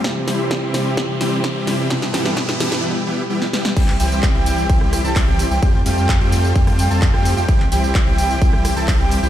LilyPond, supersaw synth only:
\new Staff \with { instrumentName = "Supersaw synth" } { \time 4/4 \key c \major \tempo 4 = 129 <e g c' e' g'>16 r16 <e g c' e' g'>8. <e g c' e' g'>8. <e g c' e' g'>16 r16 <e g c' e' g'>8. <e g c' e' g'>8. | <e g b e' g'>16 r16 <e g b e' g'>8 <e g b e' g'>16 r16 <e g b e' g'>8 <e g b e' g'>16 r16 <e g b e' g'>16 r16 <e g b e' g'>16 r16 <e g b e' g'>16 r16 | <e g c' e' g'>16 r16 <e g c' e' g'>8. <e g c' e' g'>8. <e g c' e' g'>8. <e g c' e' a'>8 <e g c' e' g'>8 <e g c' e' g'>16 | <g a c' f' g'>16 r16 <g a c' f' g'>8. <g a c' f' g'>8. <g a c' f' g'>8. <g a c' f' a'>8 <g a c' f' g'>8 <g a c' f' g'>16 |
<e g c' e' g'>16 r16 <e g c' e' g'>8. <e g c' e' g'>8. <e g c' e' g'>8. <e g c' e' a'>8 <e g c' e' g'>8 <e g c' e' g'>16 | }